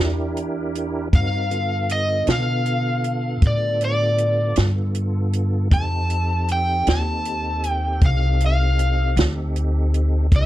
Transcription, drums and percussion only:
0.37 closed hi-hat medium
0.75 closed hi-hat medium
1.13 kick loud
1.13 closed hi-hat medium
1.51 closed hi-hat soft
1.89 closed hi-hat medium
2.27 snare medium
2.27 closed hi-hat medium
2.66 closed hi-hat medium
3.04 closed hi-hat medium
3.42 kick loud
3.42 closed hi-hat medium
3.81 closed hi-hat medium
4.18 closed hi-hat medium
4.56 snare medium
4.56 closed hi-hat medium
4.95 closed hi-hat medium
5.33 closed hi-hat medium
5.71 kick loud
5.71 closed hi-hat medium
6.10 closed hi-hat medium
6.48 closed hi-hat medium
6.87 snare medium
6.87 closed hi-hat medium
7.25 closed hi-hat medium
7.64 closed hi-hat medium
8.01 kick loud
8.01 closed hi-hat medium
8.40 closed hi-hat medium
8.79 closed hi-hat medium
9.17 snare medium
9.17 closed hi-hat medium
9.56 closed hi-hat medium
9.94 closed hi-hat medium
10.32 kick loud
10.32 closed hi-hat medium

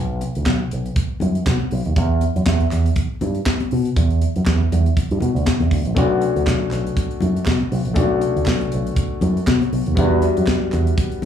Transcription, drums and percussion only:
0.21 closed hi-hat medium
0.21 muted conga soft
0.35 closed hi-hat soft
0.46 kick loud
0.46 snare loud
0.46 clap medium
0.46 high conga medium
0.71 closed hi-hat medium
0.86 closed hi-hat soft
0.96 kick loud
0.96 closed hi-hat medium
0.96 muted conga medium
1.20 closed hi-hat medium
1.20 muted conga medium
1.20 low conga medium
1.35 closed hi-hat soft
1.46 kick loud
1.46 snare loud
1.46 clap loud
1.46 clap medium
1.46 high conga medium
1.60 high conga medium
1.71 open hi-hat medium
1.85 closed hi-hat soft
1.96 kick loud
1.96 closed hi-hat medium
1.96 muted conga medium
2.21 closed hi-hat medium
2.21 muted conga soft
2.36 closed hi-hat soft
2.46 kick loud
2.46 snare loud
2.46 clap medium
2.46 high conga medium
2.60 closed hi-hat soft
2.71 snare soft
2.71 clap medium
2.71 closed hi-hat medium
2.86 closed hi-hat soft
2.96 kick loud
2.96 closed hi-hat medium
2.96 muted conga medium
3.21 closed hi-hat medium
3.21 muted conga soft
3.21 low conga medium
3.35 closed hi-hat soft
3.46 kick loud
3.46 snare loud
3.46 clap medium
3.46 clap loud
3.46 high conga medium
3.60 closed hi-hat soft
3.60 high conga medium
3.71 open hi-hat medium
3.85 closed hi-hat soft
3.96 kick loud
3.96 closed hi-hat medium
3.96 muted conga medium
4.10 closed hi-hat soft
4.21 closed hi-hat medium
4.21 muted conga soft
4.36 closed hi-hat soft
4.46 kick loud
4.46 snare loud
4.46 clap medium
4.47 clap medium
4.47 high conga medium
4.72 closed hi-hat medium
4.72 low conga medium
4.86 closed hi-hat soft
4.97 kick loud
4.97 closed hi-hat medium
4.97 muted conga medium
5.11 closed hi-hat soft
5.20 closed hi-hat medium
5.20 muted conga medium
5.20 low conga medium
5.36 closed hi-hat soft
5.45 kick loud
5.45 snare loud
5.45 clap loud
5.45 clap medium
5.45 high conga medium
5.60 closed hi-hat soft
5.60 high conga medium
5.71 kick loud
5.71 open hi-hat medium
5.85 closed hi-hat soft
5.96 kick loud
5.96 closed hi-hat medium
5.96 muted conga medium
6.21 closed hi-hat medium
6.36 closed hi-hat soft
6.47 kick loud
6.47 snare loud
6.47 clap medium
6.47 high conga medium
6.71 snare soft
6.71 clap medium
6.71 closed hi-hat medium
6.87 closed hi-hat soft
6.97 kick loud
6.97 closed hi-hat medium
6.97 muted conga medium
7.11 closed hi-hat soft
7.21 closed hi-hat medium
7.21 muted conga medium
7.21 low conga medium
7.36 closed hi-hat soft
7.46 kick loud
7.46 snare loud
7.46 clap loud
7.46 high conga medium
7.48 clap loud
7.60 high conga medium
7.72 open hi-hat medium
7.85 closed hi-hat soft
7.96 kick loud
7.96 closed hi-hat medium
7.96 muted conga medium
8.21 closed hi-hat medium
8.21 muted conga soft
8.37 closed hi-hat soft
8.45 kick loud
8.45 snare loud
8.45 clap medium
8.45 high conga medium
8.48 clap medium
8.61 closed hi-hat soft
8.72 closed hi-hat medium
8.87 closed hi-hat soft
8.96 kick loud
8.96 closed hi-hat medium
8.96 muted conga medium
9.21 closed hi-hat medium
9.21 muted conga medium
9.21 low conga medium
9.37 closed hi-hat soft
9.47 kick loud
9.47 snare loud
9.47 clap loud
9.47 clap medium
9.47 high conga medium
9.61 closed hi-hat soft
9.61 high conga medium
9.73 open hi-hat medium
9.86 closed hi-hat soft
9.97 kick loud
9.97 closed hi-hat medium
9.97 muted conga medium
10.22 closed hi-hat medium
10.22 muted conga soft
10.37 closed hi-hat soft
10.46 kick loud
10.46 snare loud
10.46 clap medium
10.48 clap medium
10.48 high conga medium
10.72 clap medium
10.72 closed hi-hat medium
10.87 closed hi-hat soft
10.98 kick loud
10.98 closed hi-hat medium
10.98 muted conga medium
11.12 closed hi-hat soft

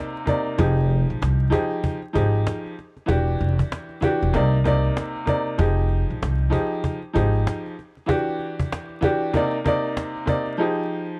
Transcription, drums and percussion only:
0.16 cajon slap soft
0.27 cajon bass loud
0.47 cajon slap soft
0.59 cajon bass loud
0.77 cajon slap soft
0.89 cajon slap soft
1.10 cajon slap soft
1.22 cajon slap loud
1.39 cajon slap soft
1.52 cajon bass medium
1.71 cajon slap soft
1.84 cajon bass loud
2.02 cajon slap soft
2.15 cajon bass loud
2.34 cajon slap soft
2.47 cajon slap loud
2.66 cajon slap soft
2.79 cajon slap soft
2.97 cajon slap soft
3.09 cajon bass loud
3.28 cajon slap soft
3.39 cajon slap soft
3.59 cajon bass medium
3.72 cajon slap loud
3.89 cajon slap soft
4.02 cajon bass medium
4.21 cajon slap soft
4.34 cajon bass medium
4.52 cajon slap soft
4.65 cajon bass medium
4.84 cajon slap soft
4.97 cajon slap loud
5.16 cajon slap soft
5.27 cajon bass loud
5.47 cajon slap soft
5.59 cajon bass loud
5.78 cajon slap soft
5.89 cajon slap soft
6.10 cajon slap soft
6.23 cajon slap loud
6.39 cajon slap soft
6.53 cajon bass medium
6.71 cajon slap soft
6.84 cajon bass medium
7.02 cajon slap soft
7.16 cajon bass loud
7.35 cajon slap soft
7.47 cajon slap loud
7.66 cajon slap soft
7.79 cajon slap soft
7.97 cajon slap soft
8.09 cajon bass loud
8.28 cajon slap soft
8.39 cajon slap soft
8.59 cajon bass medium
8.72 cajon slap loud
8.89 cajon slap soft
9.03 cajon bass medium
9.21 cajon slap soft
9.34 cajon bass medium
9.53 cajon slap soft
9.66 cajon bass loud
9.84 cajon slap soft
9.97 cajon slap loud
10.16 cajon slap soft
10.27 cajon bass loud
10.47 cajon slap soft

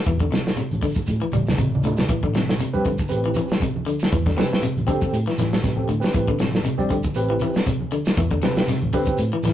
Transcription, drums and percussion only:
0.05 kick medium
0.05 closed hi-hat medium
0.05 shekere medium
0.20 kick medium
0.20 closed hi-hat soft
0.32 snare medium
0.32 closed hi-hat soft
0.32 high conga medium
0.45 snare medium
0.45 closed hi-hat soft
0.45 shekere soft
0.56 closed hi-hat medium
0.56 high conga soft
0.56 shekere medium
0.71 closed hi-hat soft
0.71 high conga medium
0.82 kick medium
0.82 open hi-hat medium
0.82 shekere soft
0.95 kick medium
0.95 closed hi-hat soft
0.95 shekere medium
1.06 closed hi-hat medium
1.06 high conga medium
1.06 shekere medium
1.32 closed hi-hat soft
1.32 low conga medium
1.32 shekere medium
1.47 snare medium
1.47 low conga medium
1.47 shekere soft
1.57 kick medium
1.57 closed hi-hat medium
1.57 low conga medium
1.57 shekere medium
1.75 low conga medium
1.82 closed hi-hat soft
1.82 shekere soft
1.87 low conga medium
1.97 snare medium
1.97 low conga medium
1.97 shekere medium
2.08 kick medium
2.08 closed hi-hat medium
2.08 high conga soft
2.08 shekere medium
2.23 kick medium
2.34 snare medium
2.34 closed hi-hat soft
2.34 high conga medium
2.47 snare medium
2.47 shekere soft
2.59 closed hi-hat medium
2.59 high conga soft
2.59 shekere medium
2.74 closed hi-hat soft
2.74 high conga medium
2.84 kick medium
2.84 closed hi-hat soft
2.84 shekere soft
2.98 kick medium
2.98 closed hi-hat soft
2.98 shekere medium
3.08 closed hi-hat medium
3.08 shekere medium
3.34 closed hi-hat soft
3.34 high conga medium
3.34 shekere medium
3.48 snare medium
3.48 shekere soft
3.60 kick medium
3.60 closed hi-hat medium
3.60 shekere medium
3.76 high conga medium
3.87 closed hi-hat soft
3.87 shekere soft
3.99 snare medium
3.99 closed hi-hat soft
3.99 shekere medium
4.12 kick medium
4.12 closed hi-hat medium
4.12 shekere medium
4.26 kick medium
4.26 snare soft
4.26 closed hi-hat soft
4.38 snare medium
4.38 closed hi-hat soft
4.38 high conga loud
4.51 snare medium
4.51 closed hi-hat soft
4.51 shekere soft
4.62 closed hi-hat medium
4.62 high conga soft
4.62 shekere medium
4.77 closed hi-hat soft
4.77 high conga medium
4.87 kick medium
4.87 closed hi-hat soft
4.87 high conga medium
4.87 shekere soft
5.01 kick medium
5.01 closed hi-hat soft
5.01 shekere medium
5.13 closed hi-hat medium
5.13 high conga soft
5.13 shekere medium
5.29 snare soft
5.38 snare soft
5.38 closed hi-hat soft
5.38 high conga medium
5.38 shekere medium
5.52 snare medium
5.52 shekere soft
5.63 kick medium
5.63 snare soft
5.63 closed hi-hat medium
5.63 shekere medium
5.78 high conga medium
5.89 closed hi-hat soft
5.89 shekere soft
6.02 snare medium
6.02 shekere medium
6.14 kick medium
6.14 closed hi-hat medium
6.14 shekere medium
6.28 kick medium
6.39 snare medium
6.39 closed hi-hat soft
6.39 high conga medium
6.53 snare medium
6.53 shekere soft
6.63 closed hi-hat medium
6.63 shekere medium
6.79 closed hi-hat soft
6.79 high conga medium
6.90 kick medium
6.90 closed hi-hat soft
6.90 shekere soft
7.03 kick medium
7.03 closed hi-hat soft
7.03 shekere medium
7.14 closed hi-hat medium
7.14 shekere medium
7.39 closed hi-hat soft
7.39 high conga medium
7.39 shekere medium
7.54 snare medium
7.54 shekere soft
7.66 kick medium
7.66 closed hi-hat medium
7.66 shekere medium
7.81 high conga medium
7.91 closed hi-hat soft
7.91 shekere soft
8.05 snare medium
8.05 closed hi-hat soft
8.05 shekere medium
8.16 kick medium
8.16 closed hi-hat medium
8.16 shekere medium
8.31 kick medium
8.31 closed hi-hat soft
8.42 snare medium
8.42 closed hi-hat medium
8.42 high conga medium
8.55 snare medium
8.55 closed hi-hat soft
8.55 shekere soft
8.67 snare soft
8.67 closed hi-hat medium
8.67 high conga soft
8.67 shekere medium
8.81 closed hi-hat soft
8.81 high conga medium
8.93 kick medium
8.93 open hi-hat medium
8.93 high conga medium
8.93 shekere soft
9.05 kick medium
9.05 closed hi-hat soft
9.05 shekere medium
9.17 closed hi-hat medium
9.17 high conga soft
9.17 shekere medium
9.43 snare soft
9.43 closed hi-hat soft
9.43 high conga medium
9.43 shekere medium

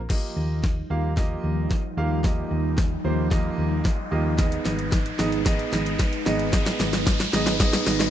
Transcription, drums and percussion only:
0.10 kick loud
0.10 snare medium
0.10 crash medium
0.64 kick loud
0.64 snare medium
1.17 kick loud
1.17 snare medium
1.71 kick loud
1.71 snare medium
2.24 kick loud
2.24 snare medium
2.78 kick loud
2.78 snare medium
3.31 kick loud
3.31 snare medium
3.85 kick loud
3.85 snare medium
4.38 kick loud
4.38 snare medium
4.38 closed hi-hat medium
4.52 closed hi-hat soft
4.66 snare medium
4.79 closed hi-hat soft
4.92 kick loud
4.92 snare medium
4.92 closed hi-hat medium
5.06 closed hi-hat soft
5.19 snare medium
5.32 closed hi-hat medium
5.46 kick loud
5.46 snare loud
5.46 closed hi-hat medium
5.59 closed hi-hat medium
5.73 snare medium
5.86 closed hi-hat medium
5.99 kick loud
5.99 snare medium
5.99 closed hi-hat medium
6.13 closed hi-hat medium
6.26 snare loud
6.39 closed hi-hat soft
6.53 kick loud
6.53 snare loud
6.53 closed hi-hat medium
6.66 snare loud
6.66 closed hi-hat soft
6.80 snare loud
6.80 open hi-hat medium
6.93 snare loud
6.93 closed hi-hat soft
7.07 kick loud
7.07 snare loud
7.07 closed hi-hat medium
7.20 snare loud
7.20 closed hi-hat soft
7.33 snare loud
7.33 open hi-hat medium
7.46 snare loud
7.46 closed hi-hat medium
7.60 kick loud
7.60 snare loud
7.60 closed hi-hat medium
7.73 snare loud
7.73 closed hi-hat medium
7.86 snare loud
7.86 open hi-hat medium
8.00 snare loud
8.00 closed hi-hat medium

